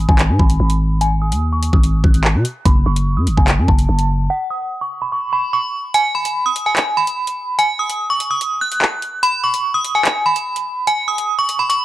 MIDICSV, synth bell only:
0, 0, Header, 1, 2, 480
1, 0, Start_track
1, 0, Tempo, 410959
1, 1181, Time_signature, 4, 2, 24, 8
1, 13840, End_track
2, 0, Start_track
2, 0, Title_t, "Synth bell"
2, 0, Program_c, 0, 98
2, 101, Note_on_c, 0, 80, 84
2, 440, Note_off_c, 0, 80, 0
2, 460, Note_on_c, 0, 83, 80
2, 1137, Note_off_c, 0, 83, 0
2, 1181, Note_on_c, 0, 80, 101
2, 1375, Note_off_c, 0, 80, 0
2, 1421, Note_on_c, 0, 87, 82
2, 1759, Note_off_c, 0, 87, 0
2, 1781, Note_on_c, 0, 85, 83
2, 1975, Note_off_c, 0, 85, 0
2, 2021, Note_on_c, 0, 87, 74
2, 2359, Note_off_c, 0, 87, 0
2, 2380, Note_on_c, 0, 90, 81
2, 3057, Note_off_c, 0, 90, 0
2, 3100, Note_on_c, 0, 83, 96
2, 3294, Note_off_c, 0, 83, 0
2, 3342, Note_on_c, 0, 85, 82
2, 3680, Note_off_c, 0, 85, 0
2, 3702, Note_on_c, 0, 87, 83
2, 3895, Note_off_c, 0, 87, 0
2, 3942, Note_on_c, 0, 80, 68
2, 4280, Note_off_c, 0, 80, 0
2, 4303, Note_on_c, 0, 81, 87
2, 4978, Note_off_c, 0, 81, 0
2, 5022, Note_on_c, 0, 78, 87
2, 5216, Note_off_c, 0, 78, 0
2, 5261, Note_on_c, 0, 87, 76
2, 5599, Note_off_c, 0, 87, 0
2, 5622, Note_on_c, 0, 85, 83
2, 5816, Note_off_c, 0, 85, 0
2, 5860, Note_on_c, 0, 83, 82
2, 5957, Note_off_c, 0, 83, 0
2, 5982, Note_on_c, 0, 85, 89
2, 6175, Note_off_c, 0, 85, 0
2, 6221, Note_on_c, 0, 83, 84
2, 6415, Note_off_c, 0, 83, 0
2, 6462, Note_on_c, 0, 85, 77
2, 6655, Note_off_c, 0, 85, 0
2, 6942, Note_on_c, 0, 80, 106
2, 7136, Note_off_c, 0, 80, 0
2, 7181, Note_on_c, 0, 83, 80
2, 7519, Note_off_c, 0, 83, 0
2, 7542, Note_on_c, 0, 87, 76
2, 7736, Note_off_c, 0, 87, 0
2, 7781, Note_on_c, 0, 80, 77
2, 8119, Note_off_c, 0, 80, 0
2, 8142, Note_on_c, 0, 83, 76
2, 8818, Note_off_c, 0, 83, 0
2, 8861, Note_on_c, 0, 80, 104
2, 9055, Note_off_c, 0, 80, 0
2, 9101, Note_on_c, 0, 87, 80
2, 9439, Note_off_c, 0, 87, 0
2, 9461, Note_on_c, 0, 85, 88
2, 9655, Note_off_c, 0, 85, 0
2, 9702, Note_on_c, 0, 87, 77
2, 10040, Note_off_c, 0, 87, 0
2, 10061, Note_on_c, 0, 90, 80
2, 10738, Note_off_c, 0, 90, 0
2, 10780, Note_on_c, 0, 83, 110
2, 10975, Note_off_c, 0, 83, 0
2, 11022, Note_on_c, 0, 85, 80
2, 11360, Note_off_c, 0, 85, 0
2, 11381, Note_on_c, 0, 87, 81
2, 11575, Note_off_c, 0, 87, 0
2, 11622, Note_on_c, 0, 80, 82
2, 11960, Note_off_c, 0, 80, 0
2, 11981, Note_on_c, 0, 83, 81
2, 12658, Note_off_c, 0, 83, 0
2, 12700, Note_on_c, 0, 80, 95
2, 12895, Note_off_c, 0, 80, 0
2, 12940, Note_on_c, 0, 87, 73
2, 13279, Note_off_c, 0, 87, 0
2, 13299, Note_on_c, 0, 85, 83
2, 13494, Note_off_c, 0, 85, 0
2, 13539, Note_on_c, 0, 83, 77
2, 13637, Note_off_c, 0, 83, 0
2, 13660, Note_on_c, 0, 85, 84
2, 13840, Note_off_c, 0, 85, 0
2, 13840, End_track
0, 0, End_of_file